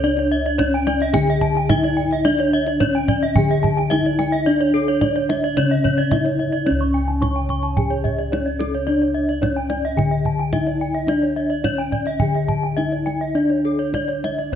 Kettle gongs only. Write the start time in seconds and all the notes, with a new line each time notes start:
Already playing: C#2
0.04 D4
0.59 D4
1.15 D3
1.70 D4
2.25 D4
2.81 D4
3.36 D3
3.91 D4
4.47 D4
5.02 D4
5.57 C#3
6.11 D4
6.67 C#4
6.71 C#2
7.21 D4
8.33 D4
8.88 D4
9.44 D4
9.97 D3
10.53 D4
11.07 D4
11.63 D4
12.19 D3
12.77 D4
13.35 D4
13.92 D4